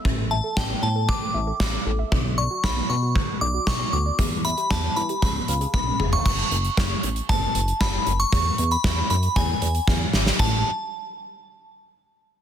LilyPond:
<<
  \new Staff \with { instrumentName = "Synth bell" } { \time 4/4 \key a \mixolydian \tempo 4 = 116 r8 a''8 g''8 a''8 d'''4. r8 | r8 cis'''8 b''8 cis'''8 r8 d'''8 cis'''8 d'''8 | r8 b''8 a''8 b''8 b''4 b''8. cis'''16 | \key fis \minor cis'''4. r8 a''4 b''8. cis'''16~ |
cis'''8. b''8. b''8 gis''4. r8 | a''8 r2. r8 | }
  \new Staff \with { instrumentName = "Synth pluck" } { \time 4/4 \key a \mixolydian e16 a16 e''16 a'16 a16 b16 a16 a'16 e16 a16 e''16 a'16 a16 b16 a'16 e''16 | d16 fis16 d''16 fis'16 fis16 b16 fis16 fis'16 d16 fis16 d''16 fis'16 fis16 b16 fis'16 d''16 | e16 g16 e''16 g'16 g16 b16 g16 g'16 eis16 b16 eis''16 gis'16 b16 cis'16 gis'16 eis''16 | \key fis \minor r1 |
r1 | r1 | }
  \new Staff \with { instrumentName = "Analog synth bass" } { \clef bass \time 4/4 \key a \mixolydian a,,4 a,,8 a,8. r16 a,,8 a,,8 a,,8 | b,,4 b,,8 b,8. r16 b,,8 b,,8 d,8 | e,4 e,8 e8 cis,8 cis,8 b,,8 eis,,8 | \key fis \minor fis,,8 fis,,8 fis,,8 a,,8 fis,,8 fis,,8 fis,,8 fis,,8 |
e,8 e,8 e,8 fis,8 e,8 e,8 e,8 gis,,8 | a,,8 r2. r8 | }
  \new DrumStaff \with { instrumentName = "Drums" } \drummode { \time 4/4 bd4 <bd sn>4 bd4 <bd sn>4 | bd4 <bd sn>4 bd4 <bd sn>4 | <hh bd>8 hh16 hh16 <hh bd sn>8 hh16 hh16 <hh bd>8 hh16 hh16 <bd tommh>8 toml16 tomfh16 | <cymc bd>8 hh16 hh16 <bd sn>8 hh16 hh16 <hh bd>8 hh16 hh16 <bd sn>8 hh16 hh16 |
<hh bd>8 hh16 hh16 <bd sn>8 hh16 hh16 <hh bd>8 hh16 hh16 <bd sn>8 sn16 sn16 | <cymc bd>4 r4 r4 r4 | }
>>